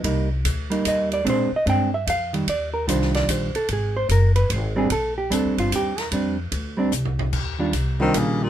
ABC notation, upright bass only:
X:1
M:3/4
L:1/8
Q:"Swing" 1/4=148
K:Bb
V:1 name="Upright bass" clef=bass
C,,2 D,,2 E,,2 | B,, z G,,2 F,,2 | E,,2 C,,2 B,,, z | _A,,,2 _G,,,2 A,,,2 |
B,,,2 (3D,, B,,, G,,, E,,2 | F,,2 D,,2 C,,2 | E,,2 C,,2 B,,,2 |]